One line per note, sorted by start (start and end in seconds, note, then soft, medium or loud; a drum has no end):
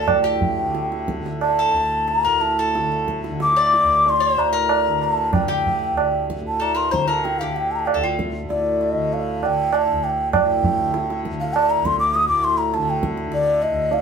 0.00 1.71 D2 medium
0.00 0.64 D3 medium
0.00 0.18 A4 medium
0.00 0.10 A5 medium
0.08 2.26 A2 medium
0.08 1.09 G5 medium
0.08 tabla na medium
0.08 tabla ge medium
0.24 1.21 G4 medium
0.41 tabla ge medium
0.64 1.18 D3 medium
0.75 tabla te medium
0.92 tabla te medium
1.08 tabla ke medium
1.18 2.77 D3 soft
1.26 tabla te medium
1.41 2.09 A5 medium
1.41 tabla na medium
1.59 2.24 A4 medium
1.72 3.83 D2 medium
1.76 tabla te medium
2.08 2.43 A#5 medium
2.08 tabla te medium
2.25 4.36 A2 medium
2.25 2.56 A#4 medium
2.41 3.07 A5 medium
2.41 tabla te medium
2.59 3.20 A4 medium
2.75 3.30 D3 medium
2.75 tabla te medium
2.92 tabla te medium
3.08 tabla ke medium
3.24 tabla te medium
3.30 4.88 D3 medium
3.40 4.11 D6 loud
3.40 tabla te medium
3.57 4.20 D5 medium
3.73 tabla te medium
3.84 5.91 D2 medium
4.06 4.41 C6 loud
4.06 tabla tin medium
4.20 4.52 C5 medium
4.36 6.41 A2 medium
4.36 5.05 A#5 medium
4.36 tabla na medium
4.53 5.53 A#4 medium
4.69 tabla na medium
4.88 5.41 D3 medium
5.02 5.33 A5 medium
5.02 tabla na medium
5.33 6.26 G5 medium
5.33 tabla na medium
5.33 tabla ge medium
5.41 6.92 D3 medium
5.48 6.41 G4 medium
5.66 tabla ge medium
5.91 7.95 D2 medium
5.97 tabla na medium
6.30 tabla ke medium
6.41 8.44 A2 medium
6.47 6.64 A5 medium
6.60 6.74 A4 medium
6.60 6.78 A#5 medium
6.60 tabla na medium
6.75 6.91 A#4 medium
6.75 6.93 C6 medium
6.91 7.42 D3 medium
6.91 7.07 C5 medium
6.91 7.11 A#5 medium
6.91 tabla ke medium
7.08 7.41 A#4 medium
7.08 7.26 A5 medium
7.08 tabla te medium
7.24 7.40 G5 medium
7.24 tabla te medium
7.39 8.93 D3 medium
7.39 7.97 G4 medium
7.39 7.58 F5 medium
7.56 7.73 G5 medium
7.56 tabla te medium
7.71 7.77 A5 medium
7.76 7.88 A5 medium
7.76 7.81 A#5 medium
7.86 8.03 F5 medium
7.86 tabla na medium
7.94 9.92 D2 medium
7.94 8.03 A4 medium
8.01 8.32 F4 soft
8.01 8.18 G5 medium
8.19 tabla ke medium
8.44 10.34 A2 medium
8.49 8.84 D5 medium
8.49 tabla te medium
8.81 9.15 D#5 medium
8.81 tabla te medium
8.93 9.42 D3 soft
9.13 9.47 F5 medium
9.13 tabla tin medium
9.42 10.81 D3 medium
9.42 9.76 G5 medium
9.42 tabla na medium
9.73 10.05 A5 medium
9.73 tabla na medium
9.92 11.81 D2 medium
10.03 10.32 G5 medium
10.03 tabla na medium
10.33 12.28 A2 medium
10.33 11.20 G5 medium
10.33 tabla na loud
10.33 tabla ge loud
10.63 tabla ge medium
10.81 11.31 D3 medium
10.94 tabla te medium
11.10 tabla te medium
11.25 tabla ke medium
11.31 12.78 D3 medium
11.40 11.55 F5 medium
11.40 tabla te medium
11.54 11.72 A5 loud
11.54 tabla na medium
11.70 11.87 A#5 loud
11.82 13.71 D2 medium
11.82 11.99 C6 loud
11.82 tabla ke medium
11.99 12.16 D6 medium
11.99 tabla te medium
12.15 12.28 D#6 loud
12.15 tabla te medium
12.28 14.02 A2 medium
12.28 12.45 D6 loud
12.44 12.59 C6 loud
12.44 tabla te medium
12.58 12.76 A#5 medium
12.74 12.91 A5 medium
12.74 tabla te medium
12.78 13.26 D3 medium
12.88 13.04 G5 medium
12.88 tabla te medium
13.03 tabla ke medium
13.17 tabla te medium
13.26 14.02 D3 medium
13.32 13.64 D5 medium
13.32 tabla te medium
13.62 13.95 D#5 medium
13.62 tabla te medium
13.71 14.02 D2 medium
13.91 14.02 F5 loud
13.91 tabla tin medium